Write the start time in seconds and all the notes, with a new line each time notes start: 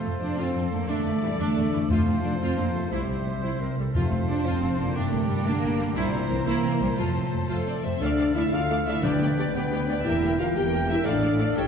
Already playing: C3 F3 A3 C4 F4 A4 C5 F5
0.04 F2 A3 C4
0.20 F2 F3 A3 C4 D4
0.37 F2 F3 C4 F4 A4 C5 F5
0.55 F2 C4 C5
0.69 F2 D3 A3 A4
0.73 A#3
0.87 E2 D3 E3 A3 D4 A4 D5 E5
1.04 E2 A3
1.22 E2 A#2 E3 G3 D4
1.38 E2 D3 A3 D4 A4 D5 E5
1.55 E2 A3 D5
1.72 E2 E3 A4
1.89 F2 C3 F3 A3 F4 A4 C5 F5
2.07 F2 C4
2.23 F2 F3 A3 D4 F4
2.40 F2 F3 C4 F4 A4 C5 F5
2.56 F2 D3 A#3 C4 F5
2.72 F2 C3 A3
2.76 C5
2.89 C2 C3 G3 E4 G4 C5 E5
3.08 C2 G3 C4
3.25 C2 G3 C4
3.42 C2 E4 C5
3.60 C2 C4 A#4 C5
3.77 C2 G3 E4 A4
3.93 F1 F2 C3 A3 F4 A4 C5 F5
4.11 F1 C3 C4
4.28 F1 F3 A3 C4 D4
4.45 F1 F3 C4 F4
4.62 F1 C4 C5
4.79 F1 D3 A3 A#3 F4
4.95 G1 G2 C3 A3 D4 G4 A#4 D5 G5
5.12 G1 D3 A#3
5.28 G1 A#2 G3 A#3
5.44 G1 D3 A#3 D4
5.62 G1 A#3 A#4
5.79 G1 G3 G4
5.95 C2 A#2 C3 G3 E4 A#4 C5 A#5
6.13 C2 G3 C4
6.28 C2 E3 A#3 C4
6.45 C2 E3 A#3 C4 E4 C5 A#5
6.63 C2 C4 A#4
6.79 C2 A#2 G3 A#3 E4
6.96 F2 A2 F3 F4 A4 C5 A5
7.13 F2 A3 C4
7.31 F2 A3 C4
7.47 F2 A3 F4 A4
7.52 C5
7.66 F2 C4 C5 D5
7.83 F2 A3 C4 A4 C5 E5
8.00 D2 D3 A3 D4 A4 D5 F5
8.17 A3 D4 A4 D5 F5
8.35 A3 E4 F4 A4 D5 E5 F5
8.52 D2 A3 F4 A4 D5 F5
8.69 A3 A4 D5 F5
8.86 A3 E4 F4 A4 D5 E5 F5
9.02 D2 D3 B3 D4 G4 B4 D5 G5
9.20 B3 G4 D5 G5
9.37 B3 D4 G4 D5 G5
9.54 D2 B3 G4 B4 D5 G5
9.71 B3 G4 B4 D5 G5
9.87 B3 D4 G4 D5 G5
10.03 E1 E2 E3 A#3 E4 G4 A#4 E5 G5
10.08 A#4 G5
10.22 A#3 G4 A#4 G5
10.38 A#3 F4 G4 A#4 F5 G5
10.55 E1 E2 A#3 G4 A#4 G5
10.72 A#3 G4 A#4 G5
10.88 A#3 E4 G4 A#4 E5 G5
11.05 A1 A2 A3 A4 D5 F5
11.09 D4
11.22 A3 A4 D5 F5
11.38 A3 D4 F4 A4 D5 F5
11.42 D4
11.55 A1 A2 A3 G4 A4 C#5 E5 G5